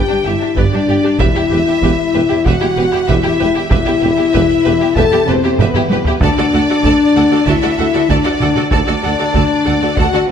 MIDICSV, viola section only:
0, 0, Header, 1, 2, 480
1, 0, Start_track
1, 0, Tempo, 626959
1, 921, Time_signature, 4, 2, 24, 8
1, 7896, End_track
2, 0, Start_track
2, 0, Title_t, "Viola section"
2, 0, Program_c, 0, 48
2, 77, Note_on_c, 0, 67, 46
2, 79, Note_off_c, 0, 67, 0
2, 79, Note_on_c, 0, 67, 51
2, 127, Note_off_c, 0, 67, 0
2, 202, Note_on_c, 0, 67, 48
2, 205, Note_off_c, 0, 67, 0
2, 205, Note_on_c, 0, 67, 52
2, 252, Note_off_c, 0, 67, 0
2, 321, Note_on_c, 0, 67, 48
2, 325, Note_off_c, 0, 67, 0
2, 325, Note_on_c, 0, 67, 49
2, 372, Note_off_c, 0, 67, 0
2, 434, Note_on_c, 0, 67, 70
2, 436, Note_off_c, 0, 67, 0
2, 436, Note_on_c, 0, 67, 65
2, 485, Note_off_c, 0, 67, 0
2, 556, Note_on_c, 0, 67, 55
2, 558, Note_off_c, 0, 67, 0
2, 558, Note_on_c, 0, 67, 55
2, 607, Note_off_c, 0, 67, 0
2, 671, Note_on_c, 0, 67, 52
2, 673, Note_off_c, 0, 67, 0
2, 673, Note_on_c, 0, 67, 59
2, 723, Note_off_c, 0, 67, 0
2, 793, Note_on_c, 0, 67, 62
2, 795, Note_off_c, 0, 67, 0
2, 795, Note_on_c, 0, 67, 57
2, 845, Note_off_c, 0, 67, 0
2, 914, Note_on_c, 0, 67, 72
2, 964, Note_off_c, 0, 67, 0
2, 1037, Note_on_c, 0, 67, 52
2, 1086, Note_off_c, 0, 67, 0
2, 1147, Note_on_c, 0, 67, 54
2, 1152, Note_off_c, 0, 67, 0
2, 1152, Note_on_c, 0, 67, 42
2, 1202, Note_off_c, 0, 67, 0
2, 1272, Note_on_c, 0, 67, 49
2, 1276, Note_off_c, 0, 67, 0
2, 1276, Note_on_c, 0, 67, 52
2, 1326, Note_off_c, 0, 67, 0
2, 1402, Note_on_c, 0, 67, 71
2, 1403, Note_off_c, 0, 67, 0
2, 1403, Note_on_c, 0, 67, 78
2, 1452, Note_off_c, 0, 67, 0
2, 1637, Note_on_c, 0, 67, 51
2, 1638, Note_off_c, 0, 67, 0
2, 1638, Note_on_c, 0, 67, 47
2, 1688, Note_off_c, 0, 67, 0
2, 1757, Note_on_c, 0, 67, 53
2, 1760, Note_off_c, 0, 67, 0
2, 1760, Note_on_c, 0, 67, 57
2, 1809, Note_off_c, 0, 67, 0
2, 1875, Note_on_c, 0, 67, 74
2, 1876, Note_off_c, 0, 67, 0
2, 1876, Note_on_c, 0, 67, 84
2, 1926, Note_off_c, 0, 67, 0
2, 1999, Note_on_c, 0, 67, 54
2, 2000, Note_off_c, 0, 67, 0
2, 2000, Note_on_c, 0, 67, 59
2, 2049, Note_off_c, 0, 67, 0
2, 2125, Note_on_c, 0, 67, 61
2, 2130, Note_off_c, 0, 67, 0
2, 2130, Note_on_c, 0, 67, 58
2, 2177, Note_off_c, 0, 67, 0
2, 2239, Note_on_c, 0, 67, 52
2, 2241, Note_off_c, 0, 67, 0
2, 2241, Note_on_c, 0, 67, 60
2, 2290, Note_off_c, 0, 67, 0
2, 2364, Note_on_c, 0, 67, 72
2, 2365, Note_off_c, 0, 67, 0
2, 2365, Note_on_c, 0, 67, 69
2, 2413, Note_off_c, 0, 67, 0
2, 2482, Note_on_c, 0, 67, 58
2, 2485, Note_off_c, 0, 67, 0
2, 2485, Note_on_c, 0, 67, 64
2, 2533, Note_off_c, 0, 67, 0
2, 2597, Note_on_c, 0, 67, 55
2, 2647, Note_off_c, 0, 67, 0
2, 2717, Note_on_c, 0, 67, 69
2, 2719, Note_off_c, 0, 67, 0
2, 2719, Note_on_c, 0, 67, 60
2, 2768, Note_off_c, 0, 67, 0
2, 2833, Note_on_c, 0, 67, 85
2, 2835, Note_off_c, 0, 67, 0
2, 2835, Note_on_c, 0, 67, 79
2, 2885, Note_off_c, 0, 67, 0
2, 2964, Note_on_c, 0, 67, 58
2, 2965, Note_off_c, 0, 67, 0
2, 2965, Note_on_c, 0, 67, 62
2, 3013, Note_off_c, 0, 67, 0
2, 3087, Note_on_c, 0, 67, 57
2, 3088, Note_off_c, 0, 67, 0
2, 3088, Note_on_c, 0, 67, 50
2, 3136, Note_off_c, 0, 67, 0
2, 3200, Note_on_c, 0, 67, 55
2, 3202, Note_off_c, 0, 67, 0
2, 3202, Note_on_c, 0, 67, 53
2, 3251, Note_off_c, 0, 67, 0
2, 3321, Note_on_c, 0, 67, 81
2, 3323, Note_off_c, 0, 67, 0
2, 3323, Note_on_c, 0, 67, 71
2, 3372, Note_off_c, 0, 67, 0
2, 3565, Note_on_c, 0, 67, 58
2, 3566, Note_off_c, 0, 67, 0
2, 3566, Note_on_c, 0, 67, 63
2, 3615, Note_off_c, 0, 67, 0
2, 3685, Note_on_c, 0, 67, 58
2, 3688, Note_off_c, 0, 67, 0
2, 3688, Note_on_c, 0, 67, 62
2, 3736, Note_off_c, 0, 67, 0
2, 3809, Note_on_c, 0, 67, 87
2, 3857, Note_off_c, 0, 67, 0
2, 3924, Note_on_c, 0, 67, 56
2, 3925, Note_off_c, 0, 67, 0
2, 3925, Note_on_c, 0, 67, 58
2, 3973, Note_off_c, 0, 67, 0
2, 4044, Note_on_c, 0, 67, 63
2, 4093, Note_off_c, 0, 67, 0
2, 4165, Note_on_c, 0, 67, 55
2, 4166, Note_off_c, 0, 67, 0
2, 4166, Note_on_c, 0, 67, 66
2, 4214, Note_off_c, 0, 67, 0
2, 4284, Note_on_c, 0, 67, 70
2, 4285, Note_off_c, 0, 67, 0
2, 4285, Note_on_c, 0, 67, 75
2, 4333, Note_off_c, 0, 67, 0
2, 4402, Note_on_c, 0, 67, 61
2, 4406, Note_off_c, 0, 67, 0
2, 4406, Note_on_c, 0, 67, 66
2, 4454, Note_off_c, 0, 67, 0
2, 4522, Note_on_c, 0, 67, 69
2, 4523, Note_off_c, 0, 67, 0
2, 4523, Note_on_c, 0, 67, 65
2, 4572, Note_off_c, 0, 67, 0
2, 4655, Note_on_c, 0, 67, 63
2, 4701, Note_off_c, 0, 67, 0
2, 4763, Note_on_c, 0, 66, 84
2, 4766, Note_on_c, 0, 69, 79
2, 4811, Note_off_c, 0, 66, 0
2, 4814, Note_off_c, 0, 69, 0
2, 4883, Note_on_c, 0, 69, 59
2, 4884, Note_on_c, 0, 66, 52
2, 4931, Note_off_c, 0, 66, 0
2, 4931, Note_off_c, 0, 69, 0
2, 4999, Note_on_c, 0, 66, 54
2, 5002, Note_on_c, 0, 69, 47
2, 5047, Note_off_c, 0, 66, 0
2, 5050, Note_off_c, 0, 69, 0
2, 5123, Note_on_c, 0, 69, 51
2, 5124, Note_on_c, 0, 66, 51
2, 5171, Note_off_c, 0, 69, 0
2, 5172, Note_off_c, 0, 66, 0
2, 5243, Note_on_c, 0, 66, 71
2, 5245, Note_on_c, 0, 69, 79
2, 5291, Note_off_c, 0, 66, 0
2, 5292, Note_off_c, 0, 69, 0
2, 5484, Note_on_c, 0, 66, 57
2, 5487, Note_on_c, 0, 69, 56
2, 5531, Note_off_c, 0, 66, 0
2, 5533, Note_off_c, 0, 69, 0
2, 5602, Note_on_c, 0, 69, 66
2, 5604, Note_on_c, 0, 66, 67
2, 5649, Note_off_c, 0, 69, 0
2, 5651, Note_off_c, 0, 66, 0
2, 5728, Note_on_c, 0, 66, 79
2, 5729, Note_on_c, 0, 69, 78
2, 5774, Note_off_c, 0, 66, 0
2, 5775, Note_off_c, 0, 69, 0
2, 5842, Note_on_c, 0, 69, 59
2, 5843, Note_on_c, 0, 66, 62
2, 5889, Note_off_c, 0, 69, 0
2, 5890, Note_off_c, 0, 66, 0
2, 5963, Note_on_c, 0, 66, 72
2, 5966, Note_on_c, 0, 69, 66
2, 6010, Note_off_c, 0, 66, 0
2, 6012, Note_off_c, 0, 69, 0
2, 6086, Note_on_c, 0, 66, 53
2, 6087, Note_on_c, 0, 69, 57
2, 6133, Note_off_c, 0, 66, 0
2, 6133, Note_off_c, 0, 69, 0
2, 6204, Note_on_c, 0, 66, 82
2, 6204, Note_on_c, 0, 69, 78
2, 6250, Note_off_c, 0, 69, 0
2, 6251, Note_off_c, 0, 66, 0
2, 6318, Note_on_c, 0, 66, 66
2, 6321, Note_on_c, 0, 69, 60
2, 6366, Note_off_c, 0, 66, 0
2, 6368, Note_off_c, 0, 69, 0
2, 6435, Note_on_c, 0, 66, 60
2, 6437, Note_on_c, 0, 69, 66
2, 6483, Note_off_c, 0, 66, 0
2, 6485, Note_off_c, 0, 69, 0
2, 6553, Note_on_c, 0, 66, 68
2, 6553, Note_on_c, 0, 69, 66
2, 6602, Note_off_c, 0, 66, 0
2, 6602, Note_off_c, 0, 69, 0
2, 6667, Note_on_c, 0, 69, 77
2, 6668, Note_on_c, 0, 66, 81
2, 6717, Note_off_c, 0, 69, 0
2, 6718, Note_off_c, 0, 66, 0
2, 6789, Note_on_c, 0, 69, 53
2, 6790, Note_on_c, 0, 66, 54
2, 6838, Note_off_c, 0, 69, 0
2, 6839, Note_off_c, 0, 66, 0
2, 6910, Note_on_c, 0, 66, 57
2, 6912, Note_on_c, 0, 69, 55
2, 6959, Note_off_c, 0, 66, 0
2, 6960, Note_off_c, 0, 69, 0
2, 7034, Note_on_c, 0, 66, 50
2, 7037, Note_on_c, 0, 69, 47
2, 7082, Note_off_c, 0, 66, 0
2, 7085, Note_off_c, 0, 69, 0
2, 7146, Note_on_c, 0, 69, 68
2, 7148, Note_on_c, 0, 66, 87
2, 7196, Note_off_c, 0, 69, 0
2, 7197, Note_off_c, 0, 66, 0
2, 7388, Note_on_c, 0, 66, 55
2, 7388, Note_on_c, 0, 69, 56
2, 7437, Note_off_c, 0, 66, 0
2, 7437, Note_off_c, 0, 69, 0
2, 7516, Note_on_c, 0, 66, 61
2, 7518, Note_on_c, 0, 69, 60
2, 7564, Note_off_c, 0, 66, 0
2, 7566, Note_off_c, 0, 69, 0
2, 7639, Note_on_c, 0, 66, 80
2, 7642, Note_on_c, 0, 69, 74
2, 7686, Note_off_c, 0, 66, 0
2, 7689, Note_off_c, 0, 69, 0
2, 7758, Note_on_c, 0, 66, 59
2, 7758, Note_on_c, 0, 69, 59
2, 7806, Note_off_c, 0, 66, 0
2, 7806, Note_off_c, 0, 69, 0
2, 7896, End_track
0, 0, End_of_file